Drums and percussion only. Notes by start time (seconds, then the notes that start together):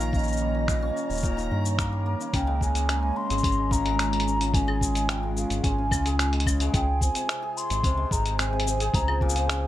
0.00 shaker
0.13 kick, shaker
0.19 shaker
0.23 shaker
0.28 shaker
0.32 shaker
0.37 shaker
0.68 finger snap, kick, shaker
0.97 shaker
1.10 shaker
1.12 shaker
1.15 shaker
1.17 shaker
1.20 shaker
1.22 kick, shaker
1.24 shaker
1.38 shaker
1.65 shaker
1.78 finger snap, kick, shaker
2.21 shaker
2.33 kick, closed hi-hat, shaker
2.61 kick, shaker
2.75 closed hi-hat, shaker
2.89 finger snap, closed hi-hat, shaker
3.30 closed hi-hat, shaker
3.38 shaker
3.43 kick, closed hi-hat, shaker
3.52 shaker
3.71 kick, shaker
3.86 closed hi-hat
3.99 finger snap, closed hi-hat, shaker
4.13 closed hi-hat
4.20 closed hi-hat
4.28 shaker
4.41 closed hi-hat, shaker
4.54 kick, closed hi-hat, shaker
4.68 claves
4.81 kick, shaker
4.95 closed hi-hat, shaker
5.09 finger snap, closed hi-hat, shaker
5.37 shaker
5.50 closed hi-hat, shaker
5.64 kick, closed hi-hat, shaker
5.91 kick, claves, shaker
6.06 closed hi-hat, shaker
6.19 finger snap, closed hi-hat, shaker
6.33 closed hi-hat
6.40 closed hi-hat
6.46 kick, claves, shaker
6.60 closed hi-hat, shaker
6.74 kick, closed hi-hat, shaker
7.01 kick, shaker
7.15 closed hi-hat, shaker
7.29 finger snap, closed hi-hat, shaker
7.57 shaker
7.70 closed hi-hat, shaker
7.84 kick, closed hi-hat, shaker
8.11 kick, shaker
8.26 closed hi-hat, shaker
8.39 finger snap, closed hi-hat, shaker
8.60 closed hi-hat
8.67 shaker
8.80 closed hi-hat, shaker
8.94 kick, closed hi-hat, shaker
9.08 claves
9.21 kick
9.29 shaker
9.36 closed hi-hat, shaker
9.49 finger snap, closed hi-hat, shaker